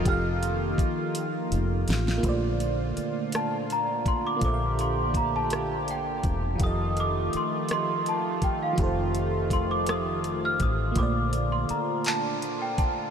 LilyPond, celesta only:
\new Staff \with { instrumentName = "Celesta" } { \time 6/8 \key bes \major \tempo 4. = 55 f'''2 r4 | r4. a''8 bes''8 c'''16 d'''16 | d'''8 c'''8 bes''16 a''8. g''8 r8 | ees'''8 d'''8 c'''8 c'''8 a''8 g''16 f''16~ |
f''16 r8. c'''16 d'''16 ees'''8. f'''16 ees'''8 | d'''8. c'''16 bes''8 a''8. g''16 a''8 | }